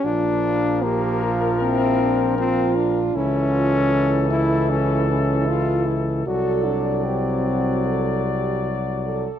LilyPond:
<<
  \new Staff \with { instrumentName = "Flugelhorn" } { \time 4/4 \key d \minor \tempo 4 = 77 bes'1 | a'1 | d''1 | }
  \new Staff \with { instrumentName = "French horn section" } { \time 4/4 \key d \minor f'4 g'8 f'8 e'8 d'8 f'4 | e'8 f'8 e'2. | a'4 g'8 fis'8 a'8 g'8 fis'8 a'8 | }
  \new Staff \with { instrumentName = "Euphonium" } { \time 4/4 \key d \minor d'4 bes4 c'4 c'8 d'8 | cis'4. e'8 cis'8 cis'8 f'8 e'8 | fis'8 d'8 c'4. r4. | }
  \new Staff \with { instrumentName = "Trombone" } { \clef bass \time 4/4 \key d \minor f1 | e1 | fis1 | }
  \new Staff \with { instrumentName = "Tuba" } { \clef bass \time 4/4 \key d \minor bes,,1 | cis,1 | c,1 | }
>>